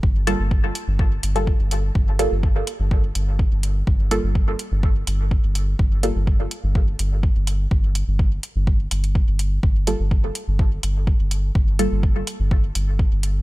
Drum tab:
HH |--x---x---xx--x-|--x---x---x---x-|--x---x---x---x-|--x---x---x---x-|
BD |o---o---o---o---|o---o---o---o---|o---o---o---o---|o---o---o---o---|

HH |--x---x---xx--x-|--x---x---x---x-|--x---x---x---x-|
BD |o---o---o---o---|o---o---o---o---|o---o---o---o---|